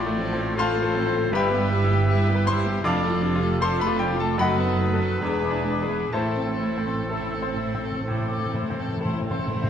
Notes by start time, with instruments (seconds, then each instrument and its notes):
Already playing: double bass section A1, timpani A2, grand piano A2 D6, cello section A2, french horn section F4, clarinet F4, oboe D5, flute section C6
0.00 violin section A3 F4, viola section A3
0.06 grand piano A3
0.19 viola section F3, violin section C4 A4, french horn section A4
0.33 grand piano C4
0.38 viola section A3, violin section A3 F4
0.56 viola section F3, violin section C4 A4, grand piano F4 A5 C6, clarinet F4, oboe C5
0.60 grand piano F5
0.76 violin section A3 F4, viola section A3
0.82 grand piano A4
0.95 viola section F3, violin section C4 A4
1.07 grand piano C4
1.13 violin section A3 F4, viola section A3
1.32 double bass section G1, grand piano G2 B5, cello section G2, viola section G3, violin section E4 B4, clarinet G4, oboe B4, french horn section B4, flute section E6
1.36 grand piano E5 G5
1.51 viola section B3, violin section G4
1.58 grand piano G3
1.71 viola section G3, violin section E4 B4, french horn section G4
1.84 grand piano E4
1.90 viola section B3, violin section G4
2.09 viola section G3, violin section E4 B4, french horn section E4, grand piano G4
2.27 viola section B3, violin section G4
2.35 grand piano B4
2.46 viola section G3, violin section E4 B4, oboe C5, grand piano C6
2.60 grand piano E4
2.66 viola section B3, violin section G4
2.84 double bass section F1, grand piano F2 F5 A5 D6, cello section F2, viola section F3, violin section D4 F4, french horn section F4, clarinet A4, oboe D5, flute section D6
3.04 viola section A3, violin section F4 A4
3.10 grand piano F3
3.23 viola section F3, violin section D4 F4, french horn section G4
3.36 grand piano F4
3.42 viola section A3, violin section F4 A4
3.60 viola section F3, violin section D4 F4, french horn section A4, grand piano A4 C6, oboe C5
3.79 viola section A3, violin section F4 A4, oboe B4, grand piano B5
3.87 grand piano F4
3.98 viola section F3, violin section D4 F4, oboe G4, grand piano G5
4.13 grand piano F3
4.19 viola section A3, violin section F4 A4, oboe A4, grand piano A5
4.38 double bass section F#1, grand piano F#2 D#5 F#5 B5, cello section F#2, viola section A3, violin section D#4 B4, french horn section F#4, clarinet A4, oboe B4, flute section D#6
4.58 viola section B3, violin section F#4 A4
4.66 grand piano D#4
4.79 viola section A3, violin section D#4 B4
4.94 grand piano A4 B4
5.00 viola section B3, violin section F#4 A4
5.21 double bass section E1, cello section E2, grand piano E2, viola section G#3, violin section D4 B4, french horn section G#4, clarinet G#4, flute section D6
5.43 viola section B3, violin section E4 G#4
5.51 grand piano D4
5.65 viola section G#3, violin section D4 B4
5.82 grand piano G#4 B4
5.89 viola section B3, violin section E4 G#4
6.12 double bass section A1, grand piano A2 C5 E5 A5, timpani A2, cello section A2, viola section A3, violin section E4 C5, clarinet A4, oboe A4, french horn section C5, flute section C6
6.22 timpani A2
6.37 viola section C4, violin section C4 A4
6.46 timpani A2, grand piano E3
6.58 timpani A2, viola section A3, violin section C5
6.63 violin section E4
6.68 timpani A2
6.77 timpani A2, grand piano C4
6.86 timpani A2, viola section C4, violin section C4 A4
6.94 timpani A2
7.02 timpani A2
7.09 timpani A2, viola section A3, violin section E4 C5, grand piano A4, flute section E6
7.21 timpani A2
7.29 timpani A2
7.34 timpani A2, viola section C4, violin section C4 A4
7.42 grand piano C5
7.46 timpani A2
7.56 timpani A2, viola section A3, violin section E4 C5
7.65 timpani A2
7.74 timpani A2, grand piano C4
7.83 timpani A2, viola section C4, violin section C4 A4
7.91 timpani A2
8.00 timpani A2
8.07 grand piano A2, timpani A2, viola section A3, violin section E4 C5, flute section D6
8.19 timpani A2
8.28 timpani A2, violin section C4, viola section C4
8.32 violin section A4
8.37 timpani A2, grand piano E3
8.46 timpani A2
8.54 timpani A2, viola section A3, violin section E4 C5
8.63 timpani A2
8.70 timpani A2, grand piano C4
8.78 timpani A2, viola section C4, violin section C4 A4
8.88 timpani A2
8.97 timpani A2, violin section E4, grand piano A4
9.01 viola section A3, violin section C5, flute section C6
9.05 timpani A2
9.14 timpani A2
9.22 timpani A2, violin section C4, viola section C4
9.26 violin section A4
9.30 timpani A2, grand piano C5
9.39 timpani A2
9.46 timpani A2, viola section A3, violin section E4 C5
9.56 timpani A2
9.63 timpani A2, grand piano C4